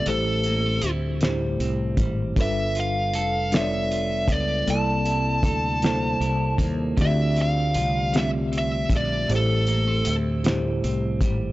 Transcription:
<<
  \new Staff \with { instrumentName = "Lead electric guitar" } { \time 6/8 \key a \phrygian \tempo 4. = 52 a'4 r2 | e''8 f''4 e''4 d''8 | a''2~ a''8 r8 | e''8 f''4 e''8 e''8 d''8 |
a'4 r2 | }
  \new Staff \with { instrumentName = "Tine electric piano" } { \time 6/8 \key a \phrygian <a, a e' g' c''>4 r8 <a, a e' g' c''>4 r8 | <g d' f' a' b'>4 r8 <g d' f' a' cis'' d''>4 r8 | <c g bes e' a' d''>4 r8 <c g bes e' a' c''>4 r8 | <d a c' e' f' g' d''>4 r8 <d a c' f' g' e''>4 r8 |
<a, a e' g' c''>4 r8 <a, a e' g' c''>4 r8 | }
  \new Staff \with { instrumentName = "Clean electric guitar" } { \time 6/8 \key a \phrygian a,8 bes16 c'16 e'8 g8 c'8 g8 | g8 f'8 a'8 b8 f'8 b8 | c8 e'8 a'8 bes8 e'8 bes8 | d8 c'8 f'8 g8 c'8 g8 |
a,8 bes16 c'16 e'8 g8 c'8 g8 | }
  \new Staff \with { instrumentName = "Fretless electric bass" } { \clef bass \time 6/8 \key a \phrygian a,,4 d,4 c,8 gis,,8 | g,,4 f,,4. cis,8 | c,4 d,4 c,8 ees,8 | d,4 c,4. bes,,8 |
a,,4 d,4 c,8 gis,,8 | }
  \new DrumStaff \with { instrumentName = "Drums" } \drummode { \time 6/8 hh8 hh8 hh8 <hh sn>8 hh8 <hh bd>8 | <hh bd>8 hh8 hh8 <hh sn>8 hh8 <hh bd>8 | hh8 hh8 <hh bd>8 <hh sn>8 hh8 <hh bd>8 | <hh bd>8 hh8 hh8 <hh sn>8 hh8 <hh bd>8 |
hh8 hh8 hh8 <hh sn>8 hh8 <hh bd>8 | }
>>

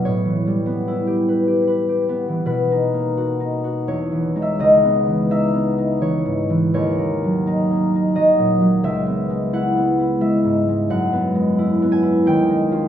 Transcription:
<<
  \new Staff \with { instrumentName = "Harp" } { \time 3/4 \key b \major \tempo 4 = 85 <cis'' e'' g'' b''>2. | b'2 cis''8. e''16 | dis''4 e''4 cis''4 | cis''2 dis''4 |
e''4 fis''4 e''4 | fis''4. gis''8 g''4 | }
  \new Staff \with { instrumentName = "Harp" } { \time 3/4 \key b \major <a, b b'>16 e16 g16 b16 e'16 g'16 b'16 g'16 b'16 g'16 b16 e16 | \tuplet 3/2 { b,8 dis'8 ais8 fis'8 dis'8 fis'8 e,8 e8 <gis dis'>8 } | \tuplet 3/2 { cis,8 b8 e8 dis'8 b8 dis'8 e8 gis,8 e8 } | \tuplet 3/2 { dis,8 ais8 fis8 dis'8 ais8 dis'8 fis8 ais,8 fis8 } |
\tuplet 3/2 { cis,8 b8 gis8 e'8 b8 e'8 gis8 gis,8 gis8 } | \tuplet 3/2 { fis,8 b8 gis8 e'8 b8 e'8 dis,8 gis8 <cis' eis'>8 } | }
>>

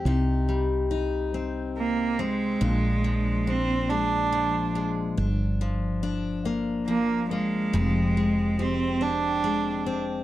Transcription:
<<
  \new Staff \with { instrumentName = "Cello" } { \time 6/8 \key c \minor \tempo 4. = 47 r2 bes8 aes8~ | aes4 c'8 d'4 r8 | r2 bes8 aes8~ | aes4 c'8 d'4 r8 | }
  \new Staff \with { instrumentName = "Steel-string acoustic guitar" } { \time 6/8 \key c \minor <c ees'>8 g8 ees'8 c'4 c'8 | <bes, d'>8 f8 d'8 aes8 f8 aes8 | d'8 f8 d'8 bes8 f8 bes8 | <f, g'>8 aes8 g'8 c'8 aes8 c'8 | }
  \new Staff \with { instrumentName = "Fretless electric bass" } { \clef bass \time 6/8 \key c \minor c,2. | bes,,2. | g,,2. | f,,2. | }
>>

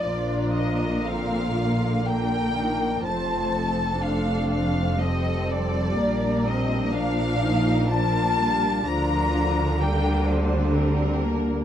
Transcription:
<<
  \new Staff \with { instrumentName = "Violin section" } { \time 3/4 \key bes \major \tempo 4 = 62 d''8 ees''8 f''4 g''4 | a''4 f''8 f''8 ees''8 d''8~ | d''8 ees''8 f''4 a''4 | bes''4 g''8 r4. | }
  \new Staff \with { instrumentName = "Violin section" } { \time 3/4 \key bes \major << { bes'2 bes'4 | c''8 a'4. a'4 | bes'4 bes'2 | bes'4 bes'8 c''8 bes'4 | } \\ { f'4 f'4 d'4 | c'4 c'2 | d'2. | f'4 bes4 d'4 | } >> }
  \new Staff \with { instrumentName = "Viola section" } { \time 3/4 \key bes \major << { d'4 c'8 bes4. | a4 d'4 c'4 | bes8 c'8 d'8 ees'8 f'4 | d'4 d'4 c'8 bes8 | } \\ { f4 d4 d8 ees8 | f4 a4 g4~ | g4 f4 f8 g8 | f8 f8 g2 | } >> }
  \new Staff \with { instrumentName = "Cello section" } { \clef bass \time 3/4 \key bes \major bes,2. | f,2. | bes,2. | d2. | }
  \new Staff \with { instrumentName = "Double bass section" } { \clef bass \time 3/4 \key bes \major bes,,2. | f,,2. | bes,,2. | d,2. | }
>>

